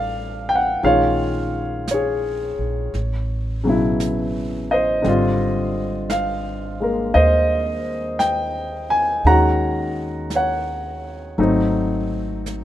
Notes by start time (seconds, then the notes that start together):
Already playing: A1 D3 G3 A3 C4 D4 F4 A4 D5 F5
0.49 G5
0.55 F#5
0.81 A#1 D#3 G#3 C#4 F4 F5, brush sweep
0.86 C#5
1.87 C#5, brush sweep, snare, hi-hat pedal
1.94 G#4
2.59 A#1
2.94 A1, brush sweep, snare
3.64 B2 C#3 F#3
3.69 E4
4.00 brush sweep, snare, hi-hat pedal
4.71 C5 D#5
5.02 G#1 D3 G3 C4, brush sweep, snare
5.08 F4
6.10 F5, brush sweep, snare, hi-hat pedal
6.80 G#3 A#3 A#4
7.14 D#2 C5 D#5, brush sweep
8.19 G5, brush sweep, snare, hi-hat pedal
8.90 G#5
9.25 D#2 D#3 G#3 C#4 F#4 F#5 A#5, brush sweep
10.30 brush sweep, snare, hi-hat pedal
10.35 C#5 F#5
11.37 G#1 F#3 A3 C4 D#4, brush sweep
12.46 brush sweep, snare, hi-hat pedal